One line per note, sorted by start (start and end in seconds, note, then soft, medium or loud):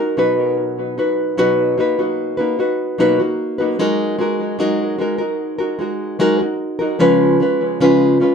0.00 0.17 D#4 soft
0.00 0.18 F#4 soft
0.00 0.17 A#4 medium
0.17 0.97 B2 medium
0.17 1.38 F#3 medium
0.17 0.97 D#4 medium
0.17 0.98 F#4 medium
0.17 0.98 B4 medium
0.98 1.38 D#4 medium
0.98 1.38 F#4 medium
0.98 1.38 B4 medium
1.37 1.78 B2 medium
1.37 1.78 F#3 medium
1.37 1.78 D#4 medium
1.37 1.78 F#4 loud
1.37 1.79 B4 loud
1.78 1.98 A#3 medium
1.78 1.98 D#4 medium
1.78 1.98 F#4 medium
1.78 1.99 B4 medium
1.99 2.39 A#3 soft
1.99 2.38 D#4 medium
1.99 2.37 F#4 medium
2.37 2.59 A#3 medium
2.37 2.58 D#4 soft
2.37 2.58 F#4 medium
2.37 2.58 B4 medium
2.59 2.99 D#4 medium
2.59 2.99 F#4 medium
2.59 3.00 B4 medium
2.98 3.18 B2 medium
2.98 3.19 F#3 medium
2.98 3.19 A#3 medium
2.98 3.19 D#4 loud
2.98 3.18 F#4 medium
2.98 3.20 B4 loud
3.20 3.60 A#3 medium
3.20 3.59 D#4 medium
3.20 3.59 F#4 medium
3.58 3.79 A#3 soft
3.58 3.79 D#4 medium
3.58 3.79 F#4 medium
3.58 3.79 B4 medium
3.79 4.19 F#3 medium
3.79 4.17 G#3 loud
3.79 4.18 D#4 loud
3.79 4.19 F#4 medium
3.79 4.20 A#4 loud
4.19 4.58 G#3 medium
4.19 4.59 D#4 medium
4.19 4.59 F#4 medium
4.19 4.60 A#4 medium
4.59 4.99 F#3 loud
4.59 4.97 G#3 medium
4.59 4.98 D#4 medium
4.59 5.00 F#4 loud
4.59 5.00 A#4 loud
4.98 5.19 G#3 medium
4.98 5.20 D#4 medium
4.98 5.19 F#4 medium
4.98 5.17 A#4 medium
5.18 5.60 D#4 medium
5.18 5.59 F#4 soft
5.18 5.57 A#4 medium
5.59 5.79 D#4 soft
5.59 5.80 F#4 medium
5.59 5.79 A#4 medium
5.79 6.18 G#3 medium
5.79 6.19 D#4 medium
5.79 6.19 F#4 medium
5.79 6.20 A#4 medium
6.19 6.40 F#3 medium
6.19 6.40 G#3 medium
6.19 6.40 D#4 loud
6.19 6.40 F#4 medium
6.19 6.38 A#4 loud
6.39 6.81 D#4 soft
6.39 6.79 F#4 soft
6.39 6.78 A#4 medium
6.79 7.00 D#4 medium
6.79 7.00 F#4 medium
6.79 7.00 A#4 medium
6.99 7.40 C#3 medium
6.99 7.40 F3 loud
6.99 7.39 G#3 loud
6.99 7.40 C#4 loud
6.99 7.41 F4 loud
6.99 7.41 B4 loud
7.40 7.80 G#3 medium
7.40 7.80 C#4 medium
7.40 7.81 F4 medium
7.40 7.81 B4 medium
7.80 8.21 C#3 medium
7.80 8.21 F3 medium
7.80 8.19 G#3 loud
7.80 8.20 C#4 loud
7.80 8.21 F4 loud
7.80 8.22 B4 loud
8.20 8.35 G#3 medium
8.20 8.35 C#4 medium
8.20 8.35 F4 medium
8.20 8.35 B4 medium